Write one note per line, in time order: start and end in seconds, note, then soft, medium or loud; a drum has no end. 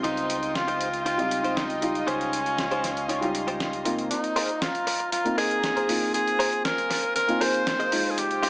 0.00 1.15 G3 medium
0.00 1.16 C4 medium
0.00 1.16 D#4 medium
0.00 0.36 D#4 loud
0.00 0.56 D#4 loud
0.00 1.16 F4 medium
0.00 4.07 F4 medium
0.00 4.07 C6 medium
0.04 2.05 C#2 medium
0.04 0.36 F4 medium
0.04 0.36 G4 medium
0.04 0.36 C5 loud
0.04 4.07 D#5 medium
0.04 2.06 G5 medium
0.04 closed hi-hat medium
0.17 closed hi-hat soft
0.30 closed hi-hat medium
0.43 closed hi-hat soft
0.55 1.05 F4 loud
0.55 snare loud
0.55 closed hi-hat medium
0.68 0.87 D#4 medium
0.68 0.87 F4 medium
0.68 0.87 G4 medium
0.68 0.87 C5 medium
0.68 closed hi-hat soft
0.81 closed hi-hat medium
0.94 closed hi-hat soft
1.05 1.25 D#4 medium
1.05 1.58 F4 loud
1.05 1.25 F4 medium
1.05 1.25 G4 medium
1.05 1.25 C5 medium
1.05 closed hi-hat medium
1.18 1.79 G3 medium
1.18 1.79 C4 medium
1.18 1.79 D#4 medium
1.18 1.80 F4 medium
1.18 closed hi-hat soft
1.31 closed hi-hat medium
1.43 1.63 D#4 medium
1.43 1.63 F4 medium
1.43 1.63 G4 medium
1.43 1.63 C5 medium
1.43 closed hi-hat soft
1.56 2.09 D#4 medium
1.56 snare loud
1.56 closed hi-hat medium
1.70 closed hi-hat soft
1.81 3.19 G3 medium
1.81 3.19 D#4 medium
1.81 3.20 F4 medium
1.81 muted clean electric guitar stroke soft
1.81 closed hi-hat medium
1.95 closed hi-hat soft
2.07 4.08 C#2 medium
2.07 3.60 C#4 loud
2.07 2.39 D#4 loud
2.07 2.39 F4 medium
2.07 2.39 G4 medium
2.07 2.39 C5 loud
2.07 4.09 F5 medium
2.07 closed hi-hat medium
2.21 closed hi-hat soft
2.33 closed hi-hat medium
2.46 closed hi-hat soft
2.58 snare loud
2.58 closed hi-hat medium
2.71 2.90 D#4 medium
2.71 2.90 F4 medium
2.71 2.90 G4 medium
2.71 2.90 C5 medium
2.71 closed hi-hat soft
2.84 snare soft
2.84 closed hi-hat medium
2.97 closed hi-hat soft
3.08 3.28 D#4 medium
3.08 3.28 F4 medium
3.08 3.28 G4 medium
3.08 3.29 C#5 medium
3.08 closed hi-hat medium
3.21 3.82 G3 medium
3.21 3.83 D#4 medium
3.21 3.83 F4 medium
3.21 closed hi-hat soft
3.35 closed hi-hat medium
3.47 3.66 D#4 medium
3.47 3.66 F4 medium
3.47 3.66 G4 medium
3.47 3.67 C5 medium
3.47 closed hi-hat soft
3.60 snare loud
3.60 closed hi-hat medium
3.73 closed hi-hat soft
3.85 4.36 A#3 medium
3.85 4.36 C4 medium
3.85 4.36 D#4 medium
3.85 4.36 F4 medium
3.85 muted clean electric guitar stroke soft
3.85 closed hi-hat medium
3.99 closed hi-hat soft
4.11 4.63 D#4 medium
4.11 8.49 F4 medium
4.11 8.49 C5 medium
4.11 6.12 A#5 medium
4.11 closed hi-hat medium
4.24 closed hi-hat soft
4.36 4.49 F4 loud
4.36 4.49 G#4 medium
4.36 4.49 A#4 medium
4.36 4.49 C5 loud
4.36 open hi-hat loud
4.49 closed hi-hat soft
4.61 5.12 F4 medium
4.61 muted clean electric guitar stroke soft
4.61 snare loud
4.61 closed hi-hat medium
4.75 closed hi-hat soft
4.87 muted clean electric guitar stroke medium
4.87 open hi-hat loud
5.00 muted clean electric guitar stroke soft
5.00 closed hi-hat soft
5.12 5.36 F4 medium
5.12 closed hi-hat medium
5.24 5.85 A#3 medium
5.24 5.86 C4 medium
5.24 5.86 D#4 medium
5.24 5.86 F4 medium
5.24 closed hi-hat soft
5.38 5.57 F4 medium
5.38 5.57 G#4 medium
5.38 6.10 G#4 loud
5.38 5.57 A#4 loud
5.38 5.57 D#5 loud
5.38 open hi-hat medium
5.51 closed hi-hat soft
5.64 snare loud
5.64 closed hi-hat medium
5.76 5.89 F4 medium
5.76 5.89 G#4 medium
5.76 5.89 A#4 medium
5.76 5.89 C5 medium
5.76 closed hi-hat soft
5.88 7.25 A#3 medium
5.88 7.26 C4 medium
5.88 7.26 D#4 medium
5.88 7.26 F4 medium
5.88 open hi-hat loud
6.01 muted clean electric guitar stroke soft
6.14 6.61 G#4 loud
6.14 8.15 G#5 medium
6.14 closed hi-hat medium
6.27 closed hi-hat soft
6.39 6.52 F4 loud
6.39 6.52 G#4 medium
6.39 6.53 A#4 loud
6.39 6.53 C5 loud
6.39 open hi-hat loud
6.53 closed hi-hat soft
6.65 7.12 A#4 loud
6.65 muted clean electric guitar stroke soft
6.65 snare loud
6.65 closed hi-hat medium
6.78 closed hi-hat soft
6.90 muted clean electric guitar stroke medium
6.90 snare soft
6.90 open hi-hat loud
7.03 muted clean electric guitar stroke soft
7.03 closed hi-hat soft
7.16 7.43 A#4 loud
7.16 closed hi-hat medium
7.28 7.89 A#3 medium
7.28 7.89 C4 medium
7.28 7.89 D#4 medium
7.28 7.90 F4 loud
7.28 closed hi-hat soft
7.41 7.60 F4 medium
7.41 7.60 G#4 medium
7.41 7.60 A#4 loud
7.41 7.61 C5 loud
7.41 8.12 C5 loud
7.41 open hi-hat loud
7.54 closed hi-hat soft
7.67 snare loud
7.67 closed hi-hat medium
7.79 7.92 F4 medium
7.79 7.92 G#4 medium
7.79 7.92 A#4 medium
7.79 7.92 D#5 loud
7.79 closed hi-hat soft
7.91 8.49 G#3 medium
7.91 8.49 D#4 medium
7.91 8.49 F4 medium
7.91 open hi-hat loud
8.05 muted clean electric guitar stroke soft
8.11 8.20 G#4 medium
8.17 8.49 C#3 medium
8.17 8.49 D#4 medium
8.17 8.49 G4 loud
8.17 8.49 G5 medium
8.17 closed hi-hat medium
8.31 closed hi-hat soft
8.43 8.49 C#4 medium
8.43 8.49 D#4 medium
8.43 8.49 F4 loud
8.43 8.49 G4 loud
8.43 8.49 C5 loud
8.43 open hi-hat loud